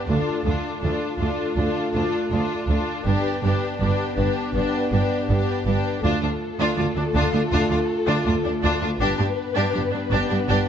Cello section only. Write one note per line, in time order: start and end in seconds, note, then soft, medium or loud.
0.09 0.17 D2 soft
0.46 0.54 D2 soft
0.83 0.91 D2 soft
1.20 1.28 D2 soft
1.57 1.66 D2 soft
1.95 2.03 D2 soft
2.32 2.40 D2 medium
2.69 2.77 D2 soft
3.06 3.14 G2 soft
3.43 3.51 G2 soft
3.80 3.88 G2 medium
4.17 4.25 G2 soft
4.55 4.63 G2 soft
4.92 5.00 G2 soft
5.29 5.37 G2 medium
5.66 5.74 G2 medium
6.04 6.11 D2 medium
6.22 6.30 D2 soft
6.59 6.66 D2 medium
6.78 6.85 D2 soft
6.96 7.03 D2 soft
7.15 7.22 D2 medium
7.33 7.41 D2 soft
7.51 7.59 D2 medium
7.71 7.78 D2 soft
8.07 8.15 D2 medium
8.26 8.34 D2 soft
8.45 8.52 D2 soft
8.63 8.71 D2 medium
8.82 8.89 D2 soft
9.00 9.08 G2 medium
9.19 9.27 G2 soft
9.57 9.64 G2 medium
9.75 9.82 G2 soft
9.93 10.01 G2 soft
10.12 10.20 G2 medium
10.31 10.38 G2 soft
10.49 10.57 G2 medium